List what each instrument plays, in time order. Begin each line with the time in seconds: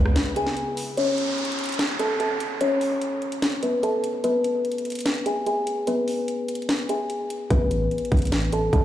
Already playing: 808-style bass C#2, string section C#3 G#3 B3 E4, kalimba B3 B4
0.06 cross-stick
0.16 snare, closed hi-hat
0.36 kalimba G#4 G#5, closed hi-hat
0.47 snare
0.57 closed hi-hat
0.77 open hi-hat
0.97 kalimba C#4 C#5, closed hi-hat, downlifter
1.18 closed hi-hat
1.38 closed hi-hat
1.45 closed hi-hat
1.52 closed hi-hat
1.59 closed hi-hat
1.64 closed hi-hat
1.65 closed hi-hat
1.69 closed hi-hat
1.72 closed hi-hat
1.74 closed hi-hat
1.79 snare, closed hi-hat
1.99 kalimba A4 A5, closed hi-hat
2.20 kalimba A4 A5, closed hi-hat
2.40 closed hi-hat
2.61 kalimba C#4 C#5, closed hi-hat
2.81 open hi-hat
3.02 closed hi-hat
3.22 closed hi-hat
3.32 closed hi-hat
3.42 snare, closed hi-hat
3.63 kalimba B3 B4, closed hi-hat
3.83 kalimba A4 A5, closed hi-hat
4.04 closed hi-hat
4.24 kalimba B3 B4, closed hi-hat
4.44 closed hi-hat
4.65 closed hi-hat
4.72 closed hi-hat
4.78 closed hi-hat
4.85 closed hi-hat
4.90 closed hi-hat
4.92 closed hi-hat
4.95 closed hi-hat
4.99 closed hi-hat
5.00 closed hi-hat
5.06 snare, closed hi-hat
5.26 kalimba G#4 G#5, closed hi-hat
5.46 kalimba G#4 G#5, closed hi-hat
5.67 closed hi-hat
5.87 kalimba B3 B4, closed hi-hat
6.08 open hi-hat
6.28 closed hi-hat
6.48 closed hi-hat
6.55 closed hi-hat
6.62 closed hi-hat
6.69 snare, closed hi-hat
6.89 kalimba G#4 G#5, closed hi-hat
7.10 closed hi-hat
7.30 closed hi-hat
7.50 808-style bass A1, kalimba B3 B4, kick, closed hi-hat
7.71 closed hi-hat
7.91 closed hi-hat
7.98 closed hi-hat
8.05 closed hi-hat
8.12 808-style bass A1, kick, closed hi-hat
8.17 closed hi-hat
8.19 closed hi-hat
8.22 closed hi-hat
8.25 closed hi-hat
8.27 closed hi-hat
8.32 snare, closed hi-hat
8.52 kalimba A4 A5, closed hi-hat
8.73 808-style bass A1, kalimba A4 A5, kick, closed hi-hat